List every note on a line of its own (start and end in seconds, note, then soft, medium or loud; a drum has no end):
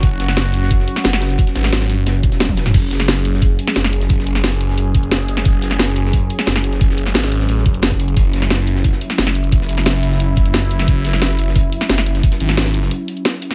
0.00 0.86 F#1 loud
0.00 13.55 F#3 medium
0.00 13.55 C#4 medium
0.00 2.72 F#4 medium
0.00 kick loud
0.00 closed hi-hat loud
0.00 closed hi-hat medium
0.19 snare medium
0.19 closed hi-hat medium
0.28 snare soft
0.37 snare loud
0.37 closed hi-hat medium
0.37 closed hi-hat loud
0.54 closed hi-hat medium
0.63 snare soft
0.71 kick loud
0.71 closed hi-hat loud
0.71 closed hi-hat medium
0.79 snare soft
0.88 closed hi-hat medium
0.96 snare soft
0.96 closed hi-hat soft
1.04 1.37 F#1 loud
1.04 snare loud
1.04 closed hi-hat medium
1.13 snare medium
1.21 snare loud
1.21 closed hi-hat medium
1.30 snare medium
1.30 closed hi-hat soft
1.38 kick loud
1.38 closed hi-hat medium
1.38 closed hi-hat loud
1.47 snare soft
1.47 closed hi-hat soft
1.55 2.05 G#1 loud
1.55 snare loud
1.55 closed hi-hat medium
1.64 snare medium
1.64 snare soft
1.64 closed hi-hat medium
1.72 snare loud
1.72 closed hi-hat medium
1.72 closed hi-hat loud
1.81 snare soft
1.81 closed hi-hat soft
1.90 snare soft
1.90 closed hi-hat medium
2.06 2.22 F#1 loud
2.06 snare loud
2.06 closed hi-hat medium
2.06 closed hi-hat loud
2.23 2.73 E1 loud
2.23 kick loud
2.23 closed hi-hat medium
2.32 snare soft
2.32 closed hi-hat soft
2.40 snare loud
2.40 closed hi-hat loud
2.40 closed hi-hat medium
2.40 high tom medium
2.49 kick medium
2.49 high tom medium
2.57 snare loud
2.57 closed hi-hat medium
2.66 snare soft
2.66 closed hi-hat soft
2.66 mid tom medium
2.74 3.58 F#1 loud
2.74 8.14 G#4 medium
2.74 kick loud
2.74 closed hi-hat loud
2.74 closed hi-hat medium
2.74 crash medium
2.91 snare medium
2.91 closed hi-hat medium
3.00 snare soft
3.08 snare loud
3.08 closed hi-hat loud
3.08 closed hi-hat medium
3.25 closed hi-hat medium
3.34 snare medium
3.41 kick loud
3.41 closed hi-hat loud
3.59 closed hi-hat medium
3.67 snare soft
3.67 closed hi-hat soft
3.76 4.09 F#1 medium
3.76 snare loud
3.76 closed hi-hat medium
3.76 closed hi-hat loud
3.84 snare medium
3.93 closed hi-hat medium
4.01 snare soft
4.01 closed hi-hat soft
4.09 4.93 F#1 loud
4.09 kick loud
4.09 closed hi-hat loud
4.19 snare soft
4.26 closed hi-hat medium
4.35 snare soft
4.44 snare loud
4.44 closed hi-hat medium
4.44 closed hi-hat loud
4.52 closed hi-hat soft
4.60 closed hi-hat medium
4.60 open hi-hat medium
4.69 snare soft
4.78 closed hi-hat loud
4.78 closed hi-hat medium
4.95 5.44 F#1 loud
4.95 kick loud
4.95 closed hi-hat medium
5.03 closed hi-hat soft
5.11 snare loud
5.11 closed hi-hat medium
5.28 closed hi-hat medium
5.37 snare soft
5.37 closed hi-hat soft
5.45 6.29 F#1 loud
5.45 kick loud
5.45 closed hi-hat medium
5.62 snare medium
5.62 closed hi-hat medium
5.71 snare soft
5.79 snare loud
5.79 closed hi-hat medium
5.96 closed hi-hat medium
6.05 snare medium
6.13 kick loud
6.13 closed hi-hat medium
6.30 closed hi-hat medium
6.38 snare soft
6.38 closed hi-hat soft
6.46 6.80 F#1 medium
6.46 snare loud
6.46 closed hi-hat medium
6.46 closed hi-hat loud
6.56 snare medium
6.64 closed hi-hat medium
6.73 snare soft
6.73 closed hi-hat soft
6.81 7.14 F#1 loud
6.81 kick loud
6.81 closed hi-hat medium
6.90 snare medium
6.98 closed hi-hat medium
7.07 snare soft
7.14 7.47 G#1 loud
7.14 snare loud
7.14 closed hi-hat medium
7.23 snare soft
7.23 closed hi-hat soft
7.32 closed hi-hat medium
7.32 open hi-hat medium
7.40 snare soft
7.49 7.64 A1 loud
7.49 closed hi-hat medium
7.58 snare soft
7.66 8.15 F#1 loud
7.66 kick loud
7.66 closed hi-hat medium
7.74 closed hi-hat soft
7.82 snare loud
7.82 closed hi-hat medium
7.91 kick medium
8.00 closed hi-hat medium
8.08 closed hi-hat soft
8.17 9.00 F#1 loud
8.17 13.55 E4 loud
8.17 kick loud
8.17 closed hi-hat loud
8.33 snare soft
8.33 closed hi-hat medium
8.42 snare soft
8.50 snare loud
8.50 closed hi-hat medium
8.67 closed hi-hat medium
8.76 snare medium
8.84 kick loud
8.84 closed hi-hat medium
8.92 snare soft
9.01 closed hi-hat medium
9.10 snare soft
9.10 closed hi-hat soft
9.18 9.51 F#1 loud
9.18 snare loud
9.18 closed hi-hat medium
9.27 snare medium
9.35 closed hi-hat medium
9.44 closed hi-hat soft
9.52 10.36 F#1 loud
9.52 kick loud
9.52 closed hi-hat medium
9.61 snare soft
9.69 closed hi-hat medium
9.78 snare soft
9.85 snare loud
9.85 closed hi-hat loud
9.85 closed hi-hat medium
9.95 closed hi-hat soft
10.03 closed hi-hat medium
10.03 open hi-hat medium
10.11 snare soft
10.20 closed hi-hat medium
10.36 10.86 F#1 loud
10.36 kick loud
10.36 closed hi-hat medium
10.46 closed hi-hat soft
10.54 snare loud
10.54 closed hi-hat medium
10.71 closed hi-hat medium
10.79 snare medium
10.79 snare soft
10.79 closed hi-hat soft
10.88 11.71 F#1 loud
10.88 kick loud
10.88 closed hi-hat loud
10.88 closed hi-hat medium
11.05 snare medium
11.05 closed hi-hat medium
11.13 snare soft
11.22 snare loud
11.22 closed hi-hat medium
11.39 closed hi-hat medium
11.48 snare medium
11.56 kick loud
11.56 closed hi-hat medium
11.72 closed hi-hat medium
11.81 snare soft
11.81 closed hi-hat soft
11.89 12.22 F#1 loud
11.89 snare loud
11.89 closed hi-hat medium
11.98 snare medium
12.06 closed hi-hat medium
12.15 snare soft
12.15 closed hi-hat soft
12.23 kick loud
12.23 closed hi-hat medium
12.23 closed hi-hat loud
12.32 snare medium
12.32 closed hi-hat soft
12.40 12.90 G#1 loud
12.40 closed hi-hat medium
12.49 snare soft
12.57 snare loud
12.57 closed hi-hat medium
12.66 snare soft
12.74 closed hi-hat medium
12.74 open hi-hat medium
12.82 snare medium
12.91 closed hi-hat loud
12.91 closed hi-hat medium
13.08 closed hi-hat medium
13.17 closed hi-hat soft
13.25 snare loud
13.25 closed hi-hat loud
13.25 closed hi-hat medium
13.42 closed hi-hat medium
13.50 snare medium
13.50 snare soft
13.50 closed hi-hat soft